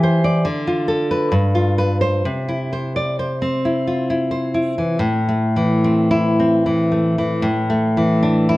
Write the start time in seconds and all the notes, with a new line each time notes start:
Already playing: E3 G4
0.03 C5
0.24 D5
0.45 D3
0.67 F4
0.88 A4
1.11 B4
1.32 G2
1.55 F4
1.78 B4
2.01 C5
2.25 C3
2.49 E4
2.73 C5
2.96 D5
3.19 C5
3.42 C4
3.65 E4
3.87 F4
4.10 E4
4.31 C5
4.54 E4
4.78 E3
4.99 A2
5.29 A3
5.56 E3
5.84 C4
6.11 E4
6.40 C4
6.66 E3
6.92 A3
7.18 E3
7.42 A2
7.70 A3
7.97 E3
8.23 D4
8.49 E4